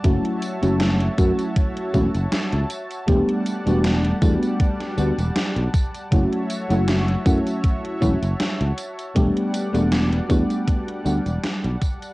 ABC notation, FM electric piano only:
X:1
M:4/4
L:1/16
Q:"Swing 16ths" 1/4=79
K:Edor
V:1 name="FM electric piano"
[F,A,CEF]3 [F,A,CEF]3 [F,A,CEF]4 [F,A,CEF] z4 z | [G,A,B,DG]3 [G,A,B,DF]3 [G,A,B,DF]4 [G,A,B,DF] z4 z | [F,A,CEF]3 [F,A,CEF]3 [F,A,CEF]4 [F,A,CEF] z4 z | [G,A,B,DG]3 [G,A,B,DF]3 [G,A,B,DF]4 [G,A,B,DF] z4 z |]